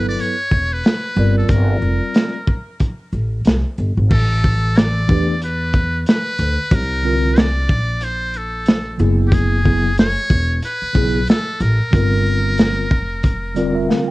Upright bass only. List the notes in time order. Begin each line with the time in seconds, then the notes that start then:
Already playing: G1
0.52 E1
1.17 G1
1.49 G1
1.82 F1
3.13 A1
3.46 C2
3.78 G1
3.97 G#1
4.11 A1
5.09 E2
6.39 D2
6.71 C2
7.69 A#1
9.00 F#1
10.30 E1
10.82 muted upright bass stroke
10.95 B1
11.60 A1
11.93 G1
12.91 F1